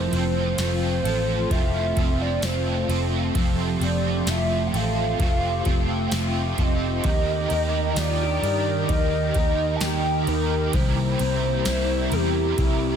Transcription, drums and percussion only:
0.13 ride
0.58 snare, ride, tambourine
1.05 ride
1.51 kick, ride
1.97 kick, ride
2.42 snare, ride, tambourine
2.90 ride
3.35 kick, ride
3.81 ride
4.27 snare, ride, tambourine
4.74 ride
5.20 kick, ride
5.65 kick, ride
6.12 snare, ride, tambourine
6.58 kick, ride
7.04 kick, ride
7.50 ride
7.96 snare, ride, tambourine
8.44 ride
8.89 kick, ride
9.34 kick, ride
9.81 snare, ride, tambourine
10.27 ride
10.73 kick, ride
11.19 ride
11.65 snare, ride, tambourine
12.12 ride
12.58 kick, ride

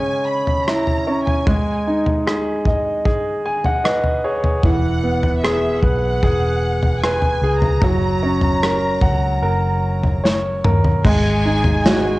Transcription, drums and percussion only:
0.47 floor tom
0.68 cross-stick
0.87 floor tom
1.27 floor tom
1.47 kick, floor tom
2.06 floor tom
2.27 cross-stick
2.65 kick, floor tom
3.05 kick
3.64 floor tom
3.85 cross-stick
4.04 floor tom
4.44 floor tom
4.63 kick, floor tom
5.23 floor tom
5.45 cross-stick
5.83 kick, floor tom
6.23 kick
6.83 floor tom
7.04 cross-stick
7.22 floor tom
7.62 floor tom
7.82 kick, floor tom
8.41 floor tom
8.63 cross-stick
9.01 kick, floor tom
10.03 floor tom
10.25 snare
10.64 mid tom
10.84 floor tom
11.05 kick, floor tom, crash
11.64 floor tom
11.86 snare

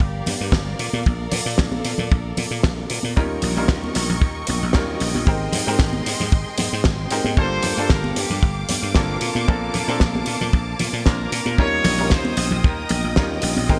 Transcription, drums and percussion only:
0.00 kick
0.26 open hi-hat, high conga, low conga
0.52 kick, snare
0.79 open hi-hat
0.93 high conga
1.06 kick
1.32 open hi-hat, low conga
1.58 kick, snare
1.72 high conga
1.85 open hi-hat
1.98 low conga
2.12 kick
2.37 open hi-hat, high conga, low conga
2.63 kick, snare
2.90 open hi-hat
3.03 high conga
3.17 kick
3.42 open hi-hat, low conga
3.68 kick, snare
3.83 high conga
3.95 open hi-hat
4.10 low conga
4.22 kick
4.47 open hi-hat, high conga, low conga
4.73 kick, snare
5.00 open hi-hat
5.15 high conga
5.27 kick
5.53 open hi-hat, low conga
5.79 kick, snare
5.93 high conga
6.06 open hi-hat
6.21 low conga
6.32 kick
6.58 open hi-hat, high conga, low conga
6.84 kick, snare
7.11 open hi-hat
7.24 high conga
7.37 kick
7.63 cross-stick, open hi-hat, low conga
7.89 kick, snare
8.04 high conga
8.16 open hi-hat
8.31 low conga
8.43 kick
8.69 open hi-hat, high conga, low conga
8.95 kick, snare
9.21 open hi-hat
9.35 high conga
9.48 kick
9.74 cross-stick, open hi-hat, low conga
10.00 kick, snare
10.15 high conga
10.26 open hi-hat
10.41 low conga
10.53 kick
10.79 open hi-hat, high conga, low conga
11.06 kick, snare
11.32 open hi-hat
11.46 high conga
11.58 kick
11.84 cross-stick, open hi-hat, low conga
12.10 kick, snare
12.25 high conga
12.37 open hi-hat
12.51 low conga
12.64 kick
12.89 open hi-hat, high conga, low conga
13.16 kick, snare
13.42 open hi-hat
13.57 high conga
13.70 kick

